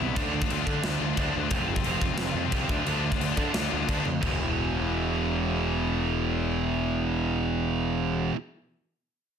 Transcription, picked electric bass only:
0.01 0.17 C2 loud
0.17 0.39 D2 loud
0.51 0.62 D2 medium
0.67 0.78 D3 loud
0.84 0.95 D2 loud
1.00 1.12 D2 loud
1.18 1.29 D2 loud
1.36 1.47 D2 loud
1.51 1.62 F1 medium
1.68 1.79 F1 loud
1.85 1.97 F1 medium
2.02 2.13 F1 medium
2.17 2.29 F1 medium
2.34 2.46 F2 loud
2.52 2.64 C2 medium
2.69 2.81 D2 loud
2.85 3.09 D2 medium
3.20 3.32 D2 medium
3.37 3.49 D3 loud
3.55 3.66 D2 medium
3.73 3.84 D2 loud
3.89 4.00 D2 medium
4.07 4.18 F2 medium
4.23 8.30 E1 medium

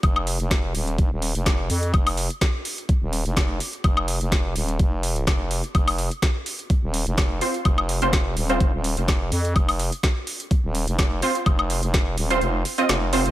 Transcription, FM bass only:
0.03 0.38 F1 medium
0.40 0.73 F1 loud
0.75 0.97 D#1 medium
0.98 1.09 F1 loud
1.11 1.33 D#1 medium
1.35 1.68 F1 medium
1.70 1.92 F2 medium
1.94 2.28 F1 medium
3.02 3.24 D#1 loud
3.26 3.35 F1 loud
3.37 3.59 F1 medium
3.84 4.19 F1 medium
4.21 4.54 F1 medium
4.56 4.78 D#1 loud
4.79 5.25 F1 loud
5.27 5.62 F1 medium
5.75 6.09 F1 medium
6.83 7.05 D#1 medium
7.07 7.16 F1 loud
7.18 7.40 F1 medium
7.65 8.00 F1 medium
8.02 8.35 F1 medium
8.37 8.59 D#1 loud
8.60 8.71 F1 loud
8.73 8.95 D#1 medium
8.97 9.30 F1 loud
9.32 9.54 F2 medium
9.56 9.90 F1 medium
10.64 10.86 D#1 loud
10.88 10.97 F1 medium
10.99 11.21 F1 loud
11.46 11.81 F1 medium
11.83 12.16 F1 loud
12.18 12.40 D#1 medium
12.41 12.63 F1 loud
12.89 13.24 F1 medium
13.26 13.31 F1 loud

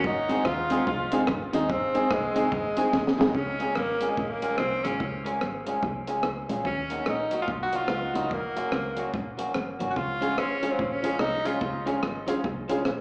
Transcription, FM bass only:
0.05 0.40 G#1 loud
0.46 0.81 D#2 loud
0.87 1.22 C2 loud
1.29 1.50 G#1 loud
1.54 1.68 D#2 loud
1.70 2.05 G#1 loud
2.11 2.46 C2 loud
2.52 2.87 G#1 loud
2.94 3.15 F#1 loud
3.19 3.33 G#1 loud
3.35 3.70 C#2 loud
3.77 4.12 G#1 loud
4.18 4.53 A#1 loud
4.60 4.81 C2 loud
4.85 4.98 G#1 loud
5.00 5.35 C#2 loud
5.43 5.77 G#1 medium
5.83 6.18 C2 loud
6.24 6.46 C#2 medium
6.49 6.63 A#1 loud
6.66 7.01 D#2 medium
7.07 7.42 A#1 medium
7.48 7.83 C2 loud
7.90 8.11 C#2 loud
8.15 8.29 C#2 loud
8.31 8.66 F#1 medium
8.73 9.08 C#2 medium
9.14 9.49 A#1 loud
9.56 9.77 F#1 medium
9.81 9.95 G#1 loud
9.97 10.39 C#2 loud
10.38 10.73 G#1 medium
10.79 11.14 A#1 loud
11.20 11.56 C2 loud
11.62 11.97 C#2 loud
12.03 12.38 G#1 medium
12.45 12.80 C2 loud
12.86 13.01 A#1 medium

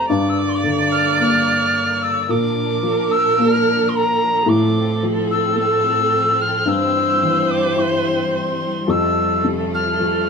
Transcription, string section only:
0.07 2.26 G2 medium
0.07 2.26 D3 medium
0.07 2.27 A#3 medium
2.25 4.45 A#2 medium
2.25 6.62 F3 medium
2.25 4.44 D4 medium
4.48 6.65 A2 medium
4.48 8.83 C4 medium
6.67 8.85 G2 medium
6.67 8.85 E3 medium
6.67 10.29 G3 medium
8.86 10.29 F3 medium
8.86 10.29 A3 medium

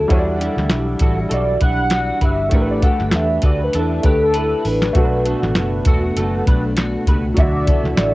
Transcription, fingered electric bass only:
0.10 0.48 E2 loud
0.57 0.68 D2 medium
0.71 0.95 B1 loud
1.00 1.25 A1 medium
1.31 1.56 B1 medium
1.61 2.10 B1 medium
2.21 2.52 G1 medium
2.52 2.90 A1 medium
3.00 3.11 G1 medium
3.13 3.38 E2 medium
3.43 3.68 D2 medium
3.74 3.98 E2 medium
4.04 4.53 D2 medium
4.65 4.89 A1 medium
4.95 5.33 B1 loud
5.43 5.54 A1 medium
5.55 5.80 F#1 loud
5.86 6.10 E1 medium
6.16 6.41 F#1 medium
6.47 6.95 B1 medium
7.07 7.31 C#2 medium
7.37 7.75 D2 medium
7.84 7.95 C#2 medium
7.98 8.14 A1 loud

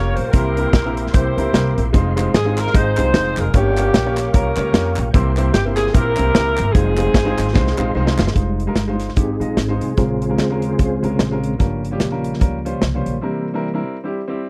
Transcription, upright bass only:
0.00 0.14 F1 medium
0.18 0.32 A#1 medium
0.34 0.68 C2 loud
0.73 1.07 A#1 medium
1.14 1.34 C2 medium
1.37 1.51 C#2 medium
1.53 1.74 C2 loud
1.78 1.92 A#1 medium
1.94 2.28 F1 loud
2.34 2.68 G#1 medium
2.74 2.94 G#1 medium
2.98 3.12 C2 medium
3.14 3.34 F1 medium
3.37 3.51 F1 medium
3.54 3.88 G1 loud
3.93 4.28 A#1 medium
4.34 4.54 C2 medium
4.57 4.71 C#2 medium
4.73 4.94 F2 medium
4.98 5.12 A#1 loud
5.14 5.48 C2 loud
5.53 5.88 G1 medium
5.94 6.15 A#1 loud
6.19 6.33 C2 medium
6.35 6.55 C#2 loud
6.59 6.73 G1 loud
6.75 7.09 F1 loud
7.14 7.35 G1 medium
7.39 7.53 G#1 medium
7.55 7.76 C2 medium
7.78 7.92 A#1 medium
7.95 8.20 C2 medium
8.19 8.33 G1 medium
8.36 8.70 F1 medium
8.75 9.10 G1 medium
9.17 9.38 G#1 medium
9.40 9.54 A#1 medium
9.57 9.78 G#1 medium
9.81 9.95 C2 medium
9.97 10.32 A#1 medium
10.38 10.72 D#2 medium
10.79 10.99 C#2 medium
11.03 11.17 C2 medium
11.19 11.54 A#1 medium
11.60 11.95 G1 medium
12.00 12.35 A#1 medium
12.41 12.76 C#2 medium
12.82 13.02 C2 medium
13.06 13.20 A#1 medium

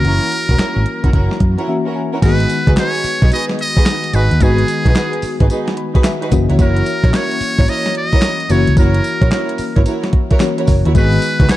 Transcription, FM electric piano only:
0.00 1.64 E3 medium
0.00 1.64 A#3 medium
0.00 1.65 C#4 medium
0.00 1.65 F#4 medium
1.68 2.22 E3 medium
1.68 2.23 A#3 medium
1.68 2.23 C#4 medium
1.68 2.23 F#4 medium
1.68 1.94 E5 medium
1.96 2.21 G#5 medium
2.22 4.37 D#3 medium
2.22 4.37 G#3 medium
2.22 2.32 A#3 soft
2.22 4.38 F#4 medium
4.40 6.28 D#3 medium
4.40 6.28 G#3 medium
4.40 6.28 B3 medium
4.40 6.29 F#4 medium
5.78 6.03 B5 medium
6.05 6.55 E5 medium
6.31 8.45 E3 medium
6.31 8.46 A#3 medium
6.31 8.46 C#4 medium
6.31 8.46 F#4 medium
8.49 10.37 E3 medium
8.49 10.37 A#3 medium
8.49 10.37 C#4 medium
8.49 10.38 F#4 medium
10.41 10.95 E3 medium
10.41 10.95 A#3 medium
10.41 10.96 C#4 medium
10.41 10.96 F#4 medium
10.94 11.57 D#3 medium
10.94 11.57 G#3 medium
10.94 11.57 B3 medium
10.94 11.57 F#4 medium

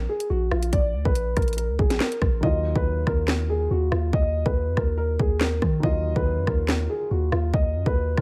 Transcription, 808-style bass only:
0.30 0.51 A#1 loud
0.51 0.72 A#1 loud
0.73 0.95 A#1 loud
0.94 1.05 D2 loud
1.05 1.35 A#1 loud
1.37 1.71 A#1 loud
1.69 1.79 D2 loud
1.79 2.00 A#1 loud
2.22 2.42 A#1 loud
2.43 2.74 D#2 loud
2.76 3.06 D#2 loud
3.07 3.68 D#2 loud
3.71 3.91 D#2 loud
3.92 4.12 D#2 loud
4.13 4.44 D#2 loud
4.46 4.69 D#2 loud
4.67 4.77 F2 loud
4.77 5.18 D#2 loud
5.19 5.60 D#2 loud
5.62 5.83 D#3 loud
5.83 6.15 D#2 loud
6.16 6.39 D#2 loud
6.37 6.47 F#2 loud
6.47 6.88 D#2 loud
7.11 7.31 D#2 loud
7.32 7.53 D#2 loud
7.54 7.76 D#2 loud
7.75 7.86 F#2 loud
7.86 8.16 D#2 loud
8.18 8.21 D#2 loud

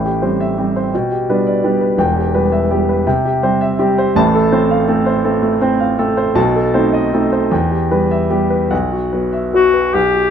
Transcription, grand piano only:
0.00 0.20 A1 medium
0.00 0.21 A2 medium
0.00 0.15 G5 medium
0.05 0.33 G4 medium
0.22 0.54 G3 medium
0.22 0.54 C4 medium
0.22 0.50 C5 medium
0.40 0.68 E5 medium
0.58 0.90 G3 medium
0.58 0.90 C4 medium
0.58 0.86 G4 medium
0.76 0.93 C5 medium
0.94 1.28 B2 medium
0.94 1.22 G5 medium
1.12 1.39 G4 medium
1.30 1.60 G3 medium
1.30 1.61 B3 medium
1.30 1.61 D4 medium
1.30 1.57 B4 medium
1.46 1.74 D5 medium
1.64 1.96 G3 medium
1.64 1.96 B3 medium
1.64 1.96 D4 medium
1.64 1.92 G4 medium
1.81 1.99 B4 medium
1.98 2.33 E1 medium
1.98 2.34 E2 medium
1.98 2.27 G5 medium
2.16 2.45 G4 medium
2.34 2.67 G3 medium
2.34 2.68 B3 medium
2.34 2.64 B4 medium
2.52 2.81 E5 medium
2.71 3.03 G3 medium
2.71 3.03 B3 medium
2.71 3.00 G4 medium
2.89 3.07 B4 medium
3.07 3.42 C3 medium
3.07 3.36 G5 medium
3.25 3.54 G4 medium
3.43 3.76 G3 medium
3.43 3.76 C4 medium
3.43 3.72 C5 medium
3.61 3.90 E5 medium
3.79 4.12 G3 medium
3.79 4.12 C4 medium
3.79 4.09 G4 medium
3.98 4.16 C5 medium
4.16 4.51 A1 medium
4.16 4.52 A2 medium
4.16 4.45 A5 medium
4.35 4.64 A4 medium
4.52 4.85 A3 medium
4.52 4.85 C4 medium
4.52 4.81 C5 medium
4.71 5.00 F5 medium
4.88 5.21 A3 medium
4.88 5.22 C4 medium
4.88 5.18 A4 medium
5.06 5.36 C5 medium
5.24 5.41 A3 medium
5.24 5.58 C4 medium
5.24 5.54 A4 medium
5.42 5.60 A3 medium
5.61 5.95 A3 medium
5.61 5.96 C4 medium
5.61 5.92 C5 medium
5.80 6.11 F5 medium
5.99 6.33 A3 medium
5.99 6.34 C4 medium
5.99 6.29 A4 medium
6.17 6.37 C5 medium
6.35 6.73 B1 medium
6.35 6.73 B2 medium
6.35 6.67 A5 medium
6.55 6.86 A4 medium
6.74 7.09 A3 medium
6.74 7.09 C4 medium
6.74 7.10 D#4 medium
6.74 7.06 C5 medium
6.93 7.25 D#5 medium
7.13 7.48 A3 medium
7.13 7.49 C4 medium
7.13 7.49 D#4 medium
7.13 7.45 A4 medium
7.32 7.52 C5 medium
7.51 7.90 E2 medium
7.51 7.84 G5 medium
7.71 8.04 G4 medium
7.91 8.27 G3 medium
7.91 8.28 B3 medium
7.91 8.24 B4 medium
8.11 8.44 E5 medium
8.30 8.68 G3 medium
8.30 8.68 B3 medium
8.30 8.63 G4 medium
8.50 8.71 B4 medium
8.71 9.11 B1 medium
8.71 9.04 F#5 medium
8.92 9.25 F#4 medium
9.13 9.50 F#3 medium
9.13 9.50 B3 medium
9.13 9.46 B4 medium
9.33 9.66 E5 medium
9.53 9.91 F#3 medium
9.53 9.91 B3 medium
9.53 9.87 F#4 medium
9.74 9.95 B4 medium
9.94 10.30 B1 medium
9.94 10.28 F#5 medium
10.15 10.30 F#4 medium

